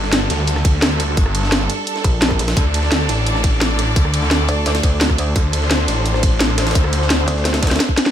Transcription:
Already playing: detuned saw bass G1, string section G3 D4 A4
0.04 snare
0.12 snare, closed hi-hat
0.30 detuned saw bass D2, snare, closed hi-hat, ride bell
0.47 closed hi-hat
0.56 cross-stick, snare
0.65 kick, closed hi-hat, ride bell
0.82 snare, closed hi-hat
1.00 cross-stick, closed hi-hat, ride bell
1.17 detuned saw bass G1, kick, closed hi-hat
1.26 cross-stick
1.35 closed hi-hat, ride bell
1.43 snare
1.52 snare, closed hi-hat
1.70 closed hi-hat, ride bell
1.87 closed hi-hat
1.96 snare
2.04 wobble bass A#1, kick, closed hi-hat, ride bell
2.22 snare, closed hi-hat
2.31 kick, cross-stick
2.39 wobble bass A#1, snare, closed hi-hat, ride bell
2.48 snare, closed hi-hat
2.57 detuned saw bass D2, string section D4 D5, kick, closed hi-hat
2.74 closed hi-hat, ride bell
2.83 snare
2.92 snare, closed hi-hat
3.09 detuned saw bass A1, snare, closed hi-hat, ride bell
3.26 closed hi-hat
3.35 cross-stick, snare
3.44 kick, closed hi-hat, ride bell
3.61 snare, closed hi-hat
3.79 cross-stick, closed hi-hat, ride bell
3.96 detuned saw bass D2, kick, closed hi-hat
4.05 cross-stick
4.14 closed hi-hat, ride bell
4.22 snare
4.31 snare, closed hi-hat
4.49 wobble bass D2, closed hi-hat, ride bell
4.66 snare, closed hi-hat
4.75 snare, closed hi-hat
4.83 wobble bass D2, kick, closed hi-hat, ride bell
5.01 snare, closed hi-hat
5.10 kick, cross-stick
5.18 closed hi-hat, ride bell
5.36 detuned saw bass D2, string section C5, kick, closed hi-hat
5.53 closed hi-hat, ride bell
5.62 snare
5.71 snare, closed hi-hat
5.88 detuned saw bass A1, snare, closed hi-hat, ride bell
6.06 closed hi-hat
6.14 cross-stick, snare
6.23 kick, closed hi-hat, ride bell
6.40 snare, closed hi-hat
6.58 cross-stick, snare, closed hi-hat, ride bell
6.67 snare, closed hi-hat
6.71 snare, closed hi-hat
6.75 detuned saw bass D2, kick, closed hi-hat
6.84 cross-stick
6.93 closed hi-hat, ride bell
7.02 snare
7.10 snare, closed hi-hat
7.28 wobble bass D2, snare, closed hi-hat, ride bell
7.36 snare
7.45 snare, closed hi-hat
7.54 snare, closed hi-hat
7.63 kick, snare, closed hi-hat, ride bell
7.67 snare, closed hi-hat
7.71 snare, closed hi-hat
7.76 snare, closed hi-hat
7.80 snare, closed hi-hat
7.89 kick
7.97 snare, closed hi-hat, ride bell
8.06 snare

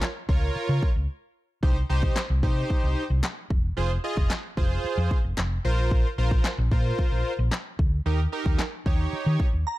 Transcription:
0.01 snare, clap
0.29 fingered electric bass C#2, analog polysynth F4 A#4 C#5, kick
0.56 muted fingered electric bass stroke
0.69 fingered electric bass C#3
0.83 kick
0.96 fingered electric bass C#2
1.63 fingered electric bass C2, analog polysynth D#4 G4 C5, kick
1.89 fingered electric bass C2, analog polysynth D#4 G4 C5
2.03 kick
2.16 snare, clap
2.30 fingered electric bass C2
2.43 fingered electric bass C3, analog polysynth D#4 G4 C5, kick
2.70 kick
2.83 fingered electric bass C2
3.10 fingered electric bass C2
3.23 snare, clap
3.50 fingered electric bass E1, kick
3.77 fingered electric bass F1, analog polysynth F4 G#4 C5
4.04 analog polysynth F4 G#4 D#5
4.17 fingered electric bass F1, kick
4.30 snare, clap
4.57 fingered electric bass F1, analog polysynth F4 G#4 C5, kick
4.84 muted fingered electric bass stroke
4.98 fingered electric bass F2
5.11 kick
5.24 fingered electric bass F1
5.37 fingered electric bass F1, snare, clap
5.65 fingered electric bass A#1, analog polysynth F4 A#4 C5
5.91 kick
6.18 fingered electric bass A#1, analog polysynth F4 A#4 C5
6.31 kick
6.44 snare, clap
6.58 fingered electric bass A#1
6.71 fingered electric bass A#2, analog polysynth F4 A#4 C5, kick
6.99 kick
7.12 fingered electric bass A#1
7.39 fingered electric bass A#1
7.51 snare, clap
7.79 fingered electric bass D2, kick
8.06 fingered electric bass D#2, analog polysynth D#4 G4 A#4
8.32 analog polysynth D#4 G4 A#4
8.46 fingered electric bass D#2, kick
8.59 snare, clap
8.86 fingered electric bass D#2, analog polysynth D#4 G4 C#5, kick
9.13 muted fingered electric bass stroke
9.26 fingered electric bass D#3
9.40 kick
9.53 fingered electric bass D#2
9.67 synth bell A#5

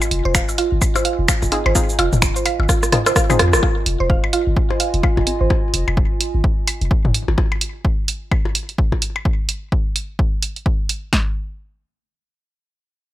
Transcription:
Already playing: ambient pad F4 D#5 G#5
0.02 percussion blips, shaker
0.11 sub bass F1, closed hi-hat
0.25 sub bass F1, synth arpeggio sound C5
0.35 synth arpeggio sound F5, finger snap, kick, shaker
0.49 percussion blips, shaker
0.58 synth arpeggio sound F4, closed hi-hat
0.72 sub bass G#1
0.82 kick, percussion blips, shaker
0.96 synth arpeggio sound C5, percussion blips, shaker
1.05 synth arpeggio sound F5, closed hi-hat
1.19 sub bass F1
1.28 synth arpeggio sound F4, finger snap, kick, shaker
1.42 sub bass F1, kick, percussion blips, shaker
1.52 synth stab C4 D#4 F4 G#4, closed hi-hat, percussion blips
1.66 sub bass G#1, synth arpeggio sound C5, percussion blips
1.75 synth stab C4 D#4 F4 G#4, synth arpeggio sound F5, kick, percussion blips, shaker
1.89 shaker
1.99 sub bass F1, synth arpeggio sound F4, closed hi-hat, percussion blips
2.13 sub bass F1, mid tom, shaker
2.22 finger snap, kick, shaker
2.36 synth arpeggio sound C5, shaker
2.46 synth arpeggio sound F5, closed hi-hat, percussion blips
2.59 sub bass G#1, percussion blips
2.69 synth arpeggio sound F4, kick, cross-stick, shaker
2.83 cross-stick, shaker
2.92 synth stab C4 D#4 F4 G#4, cross-stick, closed hi-hat, mid tom, percussion blips
3.06 synth arpeggio sound C5, cross-stick, percussion blips, shaker
3.16 synth arpeggio sound F5, kick, cross-stick, shaker
3.30 synth stab C4 D#4 F4 G#4, mid tom, percussion blips, shaker
3.39 sub bass F2, synth arpeggio sound F4, cross-stick, closed hi-hat
3.53 sub bass F1, cross-stick, percussion blips, shaker
3.63 synth arpeggio sound F4, ambient pad F4, kick, percussion blips
3.75 ambient pad D#5
3.86 sub bass F1, closed hi-hat
4.00 sub bass F1, synth arpeggio sound C5
4.09 synth arpeggio sound F5, ambient pad G#5, kick
4.24 percussion blips
4.33 synth arpeggio sound F4, closed hi-hat
4.47 sub bass G#1
4.57 kick
4.70 synth arpeggio sound C5, percussion blips
4.80 synth arpeggio sound F5, closed hi-hat
4.94 sub bass F1, closed hi-hat
5.03 synth arpeggio sound F4, kick, percussion blips
5.17 sub bass F1, kick, percussion blips
5.27 synth stab C4 D#4 F4 G#4, closed hi-hat
5.41 sub bass G#1, synth arpeggio sound C5
5.50 kick, percussion blips
5.74 sub bass F1, closed hi-hat
5.88 sub bass F1, percussion blips
5.97 kick
6.21 closed hi-hat
6.35 sub bass G#1
6.44 kick
6.67 closed hi-hat, percussion blips
6.81 sub bass F1, closed hi-hat
6.91 kick
7.05 sub bass F1, mid tom
7.14 closed hi-hat
7.28 sub bass G#1, percussion blips
7.38 kick, percussion blips
7.52 percussion blips
7.61 closed hi-hat
7.85 kick
8.08 closed hi-hat
8.32 kick, percussion blips
8.45 percussion blips
8.55 closed hi-hat
8.69 closed hi-hat
8.78 kick
8.92 kick, percussion blips
9.02 closed hi-hat
9.16 percussion blips
9.25 kick
9.49 closed hi-hat
9.72 kick
9.96 closed hi-hat
10.19 kick
10.42 closed hi-hat
10.56 closed hi-hat
10.66 kick
10.89 closed hi-hat
11.13 kick, snare

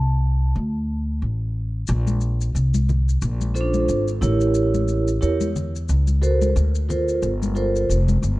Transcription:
Already playing: upright bass C2, vibraphone A5
0.56 upright bass D2
1.22 upright bass A1
1.87 upright bass A#1, maracas
2.07 high conga, maracas
2.21 maracas
2.41 maracas
2.55 upright bass C2, maracas
2.74 high conga, maracas
2.89 low conga, maracas
3.09 maracas
3.22 upright bass A#1, maracas
3.41 high conga, maracas
3.54 vibraphone C#4 F4 A4 C5, maracas
3.61 vibraphone D4
3.74 high conga, maracas
3.88 upright bass G#1, maracas
4.08 maracas
4.21 upright bass A1, vibraphone E4 G4 A#4 C#5, low conga, maracas
4.41 maracas
4.54 maracas
4.74 high conga, maracas
4.88 maracas
5.08 maracas
5.21 upright bass E2, vibraphone E4 G4 A#4 C#5, maracas
5.41 high conga, maracas
5.56 low conga, maracas
5.76 maracas
5.89 upright bass C#2, maracas
6.07 high conga, maracas
6.22 vibraphone F#4 A4 A#4 C5, maracas
6.42 high conga, maracas
6.56 upright bass D2, maracas
6.75 maracas
6.89 vibraphone F4 A4 A#4 C5, low conga, maracas
7.08 maracas
7.22 upright bass G1, maracas
7.43 high conga, maracas
7.55 vibraphone F4 A4 A#4 C5, maracas
7.76 maracas
7.89 upright bass F1, maracas
8.08 high conga, maracas
8.22 upright bass G1, low conga, maracas

